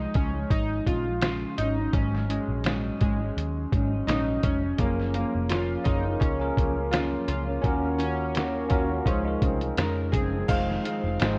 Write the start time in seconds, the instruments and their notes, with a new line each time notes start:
Already playing: clean electric guitar F3 G#3 D#4, synth keys D#4
0.14 picked electric bass C#2, clean electric guitar C#3 F3 G#3 D#4, synth keys C#4, kick, closed hi-hat
0.33 clean electric guitar G#3 D#4
0.37 clean electric guitar F3
0.50 picked electric bass G#1, synth keys D#4, kick, closed hi-hat
0.85 picked electric bass A#1, clean electric guitar C#3 F3 G#3 D#4, synth keys F4, kick, closed hi-hat
1.05 clean electric guitar F3 G#3 D#4
1.21 clean electric guitar C#3 F3 G#3 D#4, synth keys F4, snare, closed hi-hat
1.57 picked electric bass G#1, clean electric guitar G#2 F#3 C#4, synth keys D#4, closed hi-hat
1.61 clean electric guitar D#4
1.77 clean electric guitar F#3 C#4 D#4
1.92 picked electric bass G#1, clean electric guitar G#2 F#3 C#4 D#4, synth keys C#4, kick, closed hi-hat
2.15 snare
2.27 clean electric guitar G#2 F#3 C#4, synth keys G#3, closed hi-hat
2.31 clean electric guitar D#4
2.49 picked electric bass A#1
2.63 clean electric guitar G#2 F#3 C#4 D#4, snare, closed hi-hat
2.99 picked electric bass G#1, clean electric guitar G#2 F#3 C#4 D#4, synth keys G#3, kick, closed hi-hat
3.20 clean electric guitar F#3 C#4 D#4
3.37 picked electric bass D#2, closed hi-hat
3.72 picked electric bass G#1, clean electric guitar G#2 F#3 C#4 D#4, kick, closed hi-hat
3.91 clean electric guitar C#4 D#4
3.95 clean electric guitar F#3
4.07 picked electric bass A#1, clean electric guitar G#2 F#3 C#4 D#4, synth keys D#4, snare, closed hi-hat
4.40 picked electric bass F1, clean electric guitar G#2 F#3 C#4 D#4, synth keys C#4, kick, closed hi-hat
4.62 clean electric guitar F#3 C#4 D#4
4.78 picked electric bass F#1, clean electric guitar F#2 F3 A#3 C#4, synth keys A#3, tine electric piano C#4 F4 G#4 A#4, kick, closed hi-hat
5.00 snare
5.14 clean electric guitar F#2 F3 A#3 C#4, synth keys A#3, closed hi-hat
5.35 picked electric bass F1
5.49 clean electric guitar F3 A#3, synth keys F4, snare, closed hi-hat
5.53 clean electric guitar C#4
5.84 picked electric bass F#1, clean electric guitar F#2 F3 A#3, tine electric piano C#4 F4 G#4 A#4, synth keys D#4, kick, closed hi-hat
5.89 clean electric guitar C#4
6.04 clean electric guitar F3 A#3 C#4
6.20 picked electric bass C#2, synth keys C#4, kick, closed hi-hat
6.39 tine electric piano C#4 F4 G#4 A#4
6.55 picked electric bass C#2, clean electric guitar F#2 F3 A#3, kick, closed hi-hat
6.59 clean electric guitar C#4
6.76 clean electric guitar A#3 C#4
6.80 clean electric guitar F3
6.91 clean electric guitar F#2 F3 A#3, synth keys F4, snare, closed hi-hat
6.96 clean electric guitar C#4
7.27 picked electric bass C#2, clean electric guitar F#2 F3 A#3, synth keys F4, closed hi-hat
7.31 clean electric guitar C#4
7.47 clean electric guitar F3 A#3 C#4
7.61 picked electric bass D#2, clean electric guitar D#3 A#3 C#4, synth keys C#4, tine electric piano C#4 F4 F#4 A#4, kick, closed hi-hat
7.66 clean electric guitar F#4
7.98 clean electric guitar D#3 A#3 C#4, synth keys C#4, closed hi-hat
8.03 clean electric guitar F#4
8.34 clean electric guitar D#3 A#3 C#4 F#4, snare, closed hi-hat
8.69 picked electric bass D#2, clean electric guitar D#3 A#3 C#4, tine electric piano C#4 F4 F#4 A#4, synth keys C#4, kick, closed hi-hat
8.74 clean electric guitar F#4
8.89 clean electric guitar A#3 C#4 F#4
9.05 picked electric bass C#2, clean electric guitar C#3 F3 G#3, synth keys C#4, tine electric piano D#4 F4 G#4 C5, kick, closed hi-hat
9.25 tine electric piano D#4 F4 G#4 A#4
9.41 picked electric bass C2, clean electric guitar C#3 F3 G#3 C4, kick, closed hi-hat
9.61 clean electric guitar F3 G#3 C4, closed hi-hat
9.77 picked electric bass F2, clean electric guitar C#3 F3 G#3, synth keys A#4, snare, closed hi-hat
10.12 picked electric bass F#1, clean electric guitar C#3 F3 G#3, synth keys G#4, kick, closed hi-hat
10.16 clean electric guitar C4
10.33 clean electric guitar F3 G#3 C4
10.46 picked electric bass F1, clean electric guitar F2 D#3 G#3 C4, tine electric piano D#4 F4, synth keys F5, kick, closed hi-hat, crash
10.50 tine electric piano G#4 C5
10.70 snare
10.84 clean electric guitar F2 D#3 G#3, closed hi-hat
10.88 clean electric guitar C4
11.03 picked electric bass F1, clean electric guitar D#3 G#3 C4
11.18 picked electric bass G#1, clean electric guitar F2 D#3 G#3 C4, tine electric piano D#4 F4 G#4, snare, closed hi-hat
11.23 tine electric piano C5